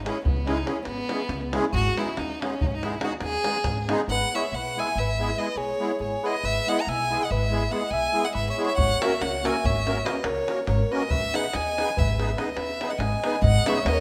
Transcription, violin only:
0.06 C#4
0.25 B3
0.47 D#4
0.66 C#4
0.86 B3
1.74 F#4
1.99 E4
2.19 D#4
2.42 C#4
2.62 D#4
2.66 C#4
2.75 D#4
2.83 E4
3.04 F#4
3.23 G#4
4.10 F#5
4.35 E5
4.54 F#5
4.79 G#5
4.98 E5
5.38 D#5
5.58 C#5
6.02 C#5
6.26 D#5
6.46 E5
6.68 F#5
6.81 A#5
6.89 G#5
7.24 F#5
7.31 E5
7.72 F#5
7.91 G#5
8.25 F#5
8.35 E5
8.50 E5
8.66 E5
8.78 F#5
9.02 E5
9.21 F#5
9.46 G#5
9.65 E5
10.05 D#5
10.25 C#5
10.67 C#5
10.92 D#5
11.10 E5
11.35 F#5
11.55 G#5
11.98 E5
12.38 D#5
12.57 E5
12.90 F#5
12.98 G#5
13.45 F#5
13.68 E5
13.88 C#5 D#5

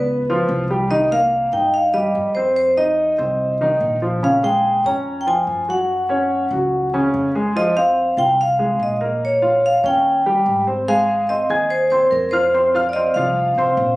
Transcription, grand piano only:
Already playing: B3 B4
0.30 F3 F4
0.70 G3 G4
0.91 D#3 D#4
1.11 A#3 A#4
1.53 D#4 D#5
1.94 G3 G4
2.36 C4 C5
2.77 D#4 D#5
3.18 C4 C5
3.61 D#3 D#4
4.02 F3 F4
4.23 C#3 C#4
4.43 G#3 G#4
4.86 C#4 C#5
5.27 F3 F4
5.68 F#3 F#4
6.09 C#4 C#5
6.52 F#3 F#4
6.93 C#3 C#4
7.35 G#3 G#4
7.56 F3 F4
7.76 C4 C5
8.18 F4 F5
8.59 G#3 G#4
9.01 A#3 A#4
9.42 F4 F5
9.84 C#4 C#5
10.26 G3 G4
10.67 C4 C5
10.88 G#3 G#4 G#5
11.29 C4 C5 C6
11.50 G#4 G#5 G#6
11.91 C4 C5 C6
12.33 F4 F5 F6
12.54 C4 C5 C6
12.75 F4 F5 F6
12.96 C4 C5 C6
13.16 F3 F4 F5
13.58 C4 C5 C6

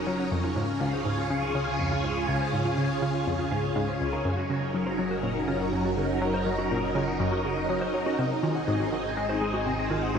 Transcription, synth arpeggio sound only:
0.07 F#3
0.31 F2
0.56 G#2
0.80 C#2
1.05 G#2
1.30 C#3
1.55 C#3
1.79 F2
2.04 G#2
2.28 C#2
2.53 G#2
2.78 C#3
3.02 C#3
3.27 F2
3.52 G#2
3.76 G#2
4.01 C#2
4.25 F#2
4.50 C#3
4.74 F#3
4.99 F#3
5.23 A#2
5.48 C#3
5.73 F#2
5.97 C#3
6.22 F#3
6.47 F#3
6.71 A#2
6.95 C#3
7.20 F#2
7.45 C#3
7.69 F#3
7.94 F#3
8.19 C3
8.43 D#3
8.68 G#2
8.92 D#3
9.17 G#3
9.41 G#3
9.66 C3
9.91 D#3
10.15 G#2

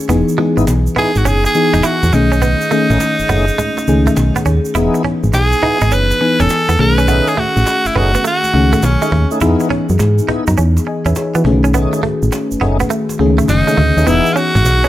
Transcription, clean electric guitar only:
0.09 B3
0.38 G#3
0.57 muted clean electric guitar stroke
0.96 B3
1.25 C#4
1.44 muted clean electric guitar stroke
1.74 D#4
1.83 E4
2.13 muted clean electric guitar stroke
2.32 C#4
2.42 B3
2.71 A3
2.90 muted clean electric guitar stroke
3.29 B3
3.58 G#3
3.78 muted clean electric guitar stroke
4.07 A3
4.17 muted clean electric guitar stroke
4.36 B3
4.46 C#4
4.75 E4
4.94 muted clean electric guitar stroke
5.05 C#4
5.34 muted clean electric guitar stroke
5.63 D#4
5.82 D#4
5.92 C#4
6.21 muted clean electric guitar stroke
6.40 C#4
6.69 B3
6.79 muted clean electric guitar stroke
6.98 C#4
7.08 B3
7.28 muted clean electric guitar stroke
7.37 A3
7.66 muted clean electric guitar stroke
7.96 B3
8.15 B3
8.24 A3
8.54 muted clean electric guitar stroke
8.73 A3
8.83 muted clean electric guitar stroke
9.02 G#3
9.12 A3
9.42 E4
9.61 muted clean electric guitar stroke
9.70 C#4
9.99 muted clean electric guitar stroke
10.29 D#4
10.48 D#4
10.58 C#4
10.87 muted clean electric guitar stroke
11.06 C#4
11.35 B3
11.45 muted clean electric guitar stroke
11.64 C#4
11.74 B3
11.93 muted clean electric guitar stroke
12.03 A3
12.32 muted clean electric guitar stroke
12.61 B3
12.80 B3
12.90 A3
13.19 muted clean electric guitar stroke
13.38 A3
13.48 muted clean electric guitar stroke
13.67 G#3
13.77 A3
14.07 B3
14.36 C#4
14.55 muted clean electric guitar stroke
14.84 C#4

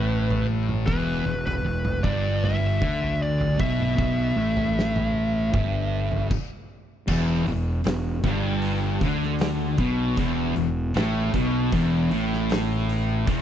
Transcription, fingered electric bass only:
Already playing: A1
0.87 E1
1.26 E1
1.65 E1
2.04 G1
2.82 D2
3.59 B1
3.98 B1
4.36 A1
5.54 G1
7.08 E1
7.47 E1
7.85 E1
8.23 G1
9.01 D2
9.78 B1
10.17 E1
10.57 E1
10.95 A1
11.33 B1
11.72 E1
12.11 A1
13.27 E1

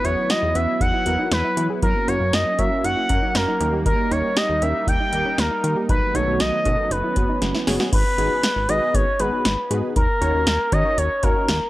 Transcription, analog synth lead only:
0.04 C#5
0.30 D#5
0.56 E5
0.81 F#5
1.32 B4
1.83 A#4
2.08 C#5
2.33 D#5
2.59 E5
2.84 F#5
3.35 A#4
3.86 A#4
4.11 C#5
4.37 D#5
4.62 E5
4.88 G5
5.38 A#4
5.89 B4
6.15 C#5
6.40 D#5
6.91 B4
7.93 B4
8.69 D#5
8.94 C#5
9.20 B4
9.96 A#4
10.72 D#5
10.98 C#5
11.23 A#4

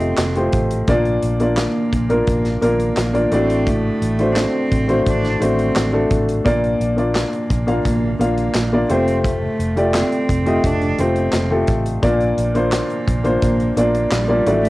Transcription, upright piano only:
Already playing: A3 F4 G4 A4 C5 D#5
0.36 A3 F4 G4 C5
0.88 A#2 A#3 D4 F4 D5
1.40 A#3 D4 F4 D5
2.09 A#3 D4 F4 A#4
2.61 A#3 D4 F4 A#4
3.13 A#3 D4 F4 D5
3.31 A2 A3 D4 F#4 D5
4.19 A3 D4 F#4 C5
4.88 A3 D4 F#4 C5
5.40 A3 D4 F#4 C5
5.93 A3 D4 F#4 A4
6.45 A#2 A#3 D4 F4 D5
6.97 A#3 D4 F4 D5
7.67 A#3 D4 F4 F5
8.19 A#3 D4 F4 F5
8.72 A#3 D4 F4 D5
8.90 A3 F4 G4 C5
9.76 A3 F4 G4 D5
10.46 A3 F4 G4 D#5
10.99 A3 F4 G4 C5
11.50 A3 F4 G4 A4
12.02 A#2 A#3 D4 F4 D5
12.55 A#3 D4 F4 C5
13.24 A#3 D4 F4 C5
13.77 A#3 D4 F4 D5
14.28 A#3 D4 F4 D5
14.46 A2 A3 D4 F#4 D5

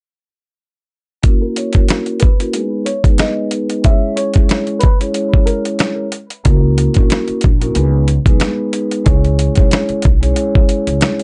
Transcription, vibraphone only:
1.23 A#3 C#4 E4 F#4 A#4
1.73 C#4 E4 F#4 A#4
2.38 A#3 C#4 E4 F#4 A#4
2.52 G#3 B3 D#4 G#4 B4
3.04 G#3 B3 D#4 G#4 B4
3.19 G#3 B3 D#4 G#4 B4
3.50 G#3 B3 D#4 G#4 B4
3.82 G#3 C#4 E4 G#4 C#5
4.33 G#3 C#4 E4 G#4 C#5
4.99 G#3 C#4 E4 G#4 C#5
5.12 G#3 C#4 E4 G#4 C#5
6.44 A#3 C#4 E4 F#4 A#4
6.94 A#3 C#4 E4 F#4 A#4
7.60 A#3 C#4 E4 F#4 A#4
7.74 G#3 B3 D#4 G#4 B4
8.26 G#3 B3 D#4 G#4 B4
8.40 G#3 B3 D#4 G#4 B4
8.72 G#3 B3 D#4 G#4 B4
9.04 G#3 C#4 E4 G#4 C#5
9.55 G#3 C#4 E4 G#4 C#5
10.20 G#3 C#4 E4 G#4 C#5
10.34 G#3 C#4 E4 G#4 C#5

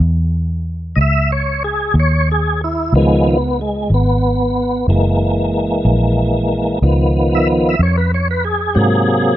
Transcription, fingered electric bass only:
0.00 E2
0.97 C#2
1.94 D#2
2.93 C#2
3.90 G#1
4.88 F#1
5.85 A#1
6.82 C#2
7.79 F2
8.76 G#2

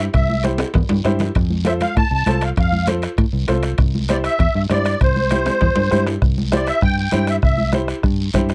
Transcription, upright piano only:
0.43 E4 G4 C5
1.04 E4 G4 C5
1.65 F4 A4 C5
2.27 F4 A4 C5
2.87 F4 A4 C5
3.48 F4 A4 C5
4.09 E4 G4 C5
4.70 E4 G4 C5
5.32 E4 G4 C5
5.91 E4 G4 C5
6.52 E4 G4 C5
7.12 E4 G4 C5
7.73 E4 G4 C5
8.34 E4 G4 C5

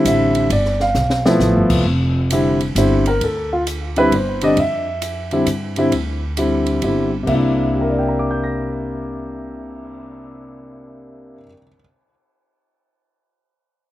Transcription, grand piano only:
Already playing: D3 G3 C4 E4
0.08 E5
0.52 D5
0.81 F5
1.25 F3 A3 B3 E4
2.32 D3 G3 C4 E4
2.77 D3 G3 C4 E4 C5
3.08 A#4
3.24 A4
3.53 F4
3.97 D3 G3 C4 E4 B4
4.14 C5
4.42 D3 G3 C4 D4 D#5
4.60 E5
5.32 D3 G3 C4 E4
5.77 D3 G3 C4 E4
6.38 D3 G3 C4 E4
6.83 D3 G3 C4 E4
7.23 C3 A#3
7.28 D4 E5
7.35 E4
7.74 G4
7.81 A#4
7.90 D5
7.99 G5
8.08 A#5
8.19 D6
8.31 G6
8.44 A#6

